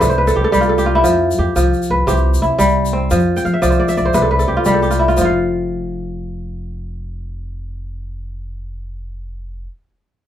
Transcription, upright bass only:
0.02 0.34 C2 loud
0.36 0.44 C2 loud
0.53 1.02 C2 medium
1.04 1.37 F2 medium
1.39 1.47 F2 medium
1.56 1.72 C2 medium
1.90 2.06 C2 medium
2.08 2.40 C2 loud
2.42 2.50 C2 medium
2.59 3.08 C2 medium
3.11 3.43 F2 medium
3.46 3.53 F2 medium
3.63 3.79 C2 medium
3.97 4.13 C2 medium
4.14 4.46 C2 loud
4.49 4.57 C2 medium
4.66 5.15 C2 medium
5.18 9.66 F1 medium

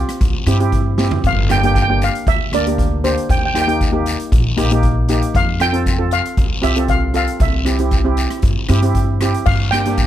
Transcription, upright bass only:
0.21 0.32 C2 medium
0.46 1.09 G2 loud
1.24 2.08 G1 loud
2.27 2.38 D2 medium
2.52 3.15 D2 medium
3.29 4.13 D#2 medium
4.32 4.43 A#1 medium
4.58 5.21 A#1 medium
5.34 6.18 F2 loud
6.37 6.49 C2 medium
6.63 7.26 C2 loud
7.40 8.24 C2 loud
8.43 8.54 G2 medium
8.69 9.32 G2 loud
9.46 10.07 G2 medium

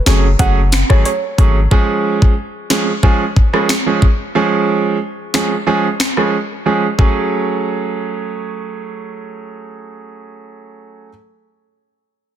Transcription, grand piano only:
0.06 0.25 F#3 medium
0.06 0.26 A3 medium
0.06 0.26 C#4 medium
0.06 0.26 G#4 medium
0.39 0.58 F#3 medium
0.39 0.58 A3 medium
0.39 0.59 C#4 medium
0.39 0.59 G#4 loud
0.90 1.07 F#3 medium
0.90 1.07 A3 medium
0.90 1.07 C#4 medium
0.90 1.07 G#4 medium
1.38 1.57 F#3 medium
1.38 1.57 A3 medium
1.38 1.57 C#4 medium
1.38 1.58 G#4 medium
1.71 2.32 F3 medium
1.71 2.32 G#3 medium
1.71 2.32 C#4 medium
1.71 2.32 G#4 loud
2.70 2.89 F3 medium
2.70 2.89 G#3 medium
2.70 2.89 C#4 medium
2.70 2.89 G#4 medium
3.03 3.22 F3 medium
3.03 3.22 G#3 medium
3.03 3.22 C#4 medium
3.03 3.22 G#4 medium
3.53 3.71 F3 medium
3.53 3.71 G#3 medium
3.53 3.71 C#4 medium
3.53 3.71 G#4 medium
3.86 4.04 F3 medium
3.86 4.04 G#3 medium
3.86 4.04 C#4 medium
3.86 4.04 G#4 medium
4.35 4.96 F3 medium
4.35 4.96 G#3 medium
4.35 4.96 C#4 medium
4.35 4.96 G#4 medium
5.34 5.53 F3 medium
5.34 5.53 G#3 medium
5.34 5.53 C#4 medium
5.34 5.53 G#4 medium
5.67 5.86 F3 medium
5.67 5.86 G#3 medium
5.67 5.86 C#4 medium
5.67 5.86 G#4 loud
6.17 6.34 F3 medium
6.17 6.35 G#3 medium
6.17 6.35 C#4 medium
6.17 6.35 G#4 medium
6.66 6.85 F3 medium
6.66 6.85 G#3 medium
6.66 6.85 C#4 medium
6.66 6.85 G#4 medium
6.98 11.08 F#3 medium
6.98 11.08 A3 medium
6.98 11.09 C#4 medium
6.98 11.09 G#4 medium

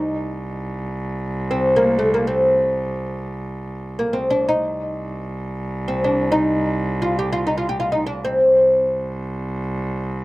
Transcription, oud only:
0.00 0.87 D#4 medium
1.51 1.78 C4 medium
1.76 1.98 A#3 medium
1.99 2.14 A3 medium
2.14 2.27 A#3 medium
2.27 3.18 C4 medium
3.99 4.15 A#3 medium
4.13 4.30 C4 medium
4.30 4.48 D4 medium
4.49 5.29 D#4 medium
5.88 6.04 C4 medium
6.04 6.31 D4 medium
6.32 6.98 D#4 medium
7.02 7.18 F4 medium
7.19 7.32 G4 medium
7.33 7.46 F4 medium
7.47 7.57 D#4 medium
7.58 7.68 F4 medium
7.69 7.79 G4 medium
7.80 7.92 F4 medium
7.92 8.06 D#4 medium
8.06 8.23 D4 medium
8.25 9.37 C4 medium

